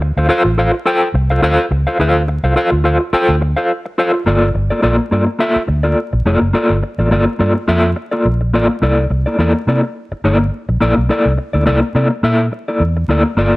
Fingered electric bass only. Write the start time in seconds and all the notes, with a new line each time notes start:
Already playing: D2
0.17 D2
0.29 muted fingered electric bass stroke
0.45 A1
1.14 C2
1.42 D2
1.71 C#2
1.99 D2
2.43 C2
2.72 D2
3.13 muted fingered electric bass stroke
3.29 D2
4.26 G1
4.54 G1
4.83 A#1
5.12 G2
5.56 muted fingered electric bass stroke
5.68 D2
6.13 A#1
6.25 F1
6.41 F#1
6.70 G1
6.98 A1
7.11 G1
7.40 G2
7.68 F2
8.25 A#1
8.53 A1
8.82 C2
9.10 C2
9.39 E2
9.67 C3
10.11 muted fingered electric bass stroke
10.24 G1
10.69 A#1
10.81 A#1
10.97 B1
11.26 C2
11.54 D2
11.66 C2
11.95 C3
12.23 A#2
12.80 E2
13.08 D2
13.37 G1